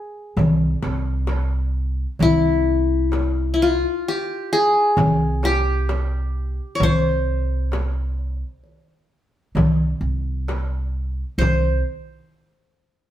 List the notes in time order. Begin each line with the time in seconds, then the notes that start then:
Already playing: G#4
0.37 C2, frame drum, darbuka dum
0.83 C2, darbuka tek, frame drum
1.27 darbuka tek, frame drum
2.19 C2 E4, darbuka dum, frame drum
3.12 darbuka tek, frame drum
3.54 E4
3.62 F4
4.08 G4
4.53 G#4
4.97 C2, darbuka dum, frame drum
5.43 G4, darbuka tek, frame drum
5.89 darbuka tek, frame drum
6.75 C#5
6.80 C2 C5, frame drum, darbuka dum
7.72 darbuka tek, frame drum
8.19 darbuka ka
8.64 darbuka ka
9.55 C2, darbuka dum, frame drum
10.01 C2
10.48 darbuka tek, frame drum
11.38 C2 C5, darbuka dum, frame drum